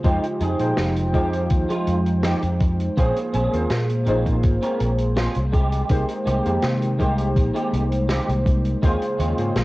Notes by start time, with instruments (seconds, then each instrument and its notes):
0.03 fingered electric bass F2, ambient pad F3 G#3 D#4 G5, synth keys G#3 D#4 F4 G4 C5, clean electric guitar G#3 D#4 G4, kick, closed hi-hat
0.23 closed hi-hat
0.41 fingered electric bass F2, clean electric guitar G#3 D#4 G#4, closed hi-hat
0.59 fingered electric bass A#2, synth keys G#3 D#4 F4 C5 G5, closed hi-hat
0.77 fingered electric bass F1, snare, closed hi-hat
0.96 closed hi-hat
1.12 fingered electric bass F2, synth keys G#3 D#4 F4 C5 G5, clean electric guitar G#3 D#4 G4, kick, closed hi-hat
1.33 closed hi-hat
1.50 fingered electric bass D#2, kick, closed hi-hat
1.69 clean electric guitar G#3 D#4 F4, closed hi-hat
1.87 fingered electric bass F2, closed hi-hat
2.06 closed hi-hat
2.23 clean electric guitar G#3 D#4 G4, snare, closed hi-hat
2.43 fingered electric bass F2, closed hi-hat
2.60 muted clean electric guitar stroke, kick, closed hi-hat
2.80 closed hi-hat
2.97 fingered electric bass A#1, ambient pad G#3 A#3, synth keys A#3 F4 G#4 C5, clean electric guitar C4 C#4 G#4, kick, closed hi-hat
3.16 closed hi-hat
3.33 fingered electric bass A#1, clean electric guitar C4 C#4 G#4, closed hi-hat
3.52 fingered electric bass D#2, synth keys A#3 F4 G#4 C5, closed hi-hat
3.70 fingered electric bass A#2, snare, closed hi-hat
3.89 closed hi-hat
4.05 fingered electric bass A#1, synth keys A#3 F4 G#4 C5, clean electric guitar C4 C#4 D#4, closed hi-hat
4.26 kick, closed hi-hat
4.43 fingered electric bass G#1, kick, closed hi-hat
4.62 clean electric guitar C4 C#4 A#4, closed hi-hat
4.80 fingered electric bass A#1, closed hi-hat
4.98 closed hi-hat
5.16 clean electric guitar C4 C#4 F4, snare, closed hi-hat
5.35 fingered electric bass C2, closed hi-hat
5.52 ambient pad D#3 C5 G5, clean electric guitar G#3 C4 G4, kick, closed hi-hat
5.72 closed hi-hat
5.89 fingered electric bass C2, synth keys G#3 A#3 D#4 G4 C5, kick, closed hi-hat
6.09 closed hi-hat
6.25 fingered electric bass C2, clean electric guitar G#3 C4 G4, closed hi-hat
6.45 fingered electric bass F2, synth keys G#3 A#3 D#4 G4 C5, closed hi-hat
6.62 fingered electric bass C3, snare, closed hi-hat
6.82 closed hi-hat
6.98 fingered electric bass C2, clean electric guitar G#3 C4 G4, synth keys G#3 A#3 D#4 G4 C5, kick, closed hi-hat
7.18 closed hi-hat
7.36 fingered electric bass A#1, kick, closed hi-hat
7.55 clean electric guitar G#3 C4 G4, closed hi-hat
7.73 fingered electric bass C2, closed hi-hat
7.92 closed hi-hat
8.09 clean electric guitar G#3 C4 G4, snare, closed hi-hat
8.29 fingered electric bass C2, closed hi-hat
8.46 muted clean electric guitar stroke, kick, closed hi-hat
8.64 closed hi-hat
8.82 fingered electric bass D#2, ambient pad C#3 F4, clean electric guitar G#3 C4 C#4 F4, synth keys A#3 F4 G#4 C5, kick, closed hi-hat
9.01 closed hi-hat
9.18 fingered electric bass D#2, clean electric guitar G#3 C4 C#4 F4, closed hi-hat
9.38 fingered electric bass G#2, synth keys A#3 F4 G#4 C5, closed hi-hat
9.56 fingered electric bass A#1, snare, closed hi-hat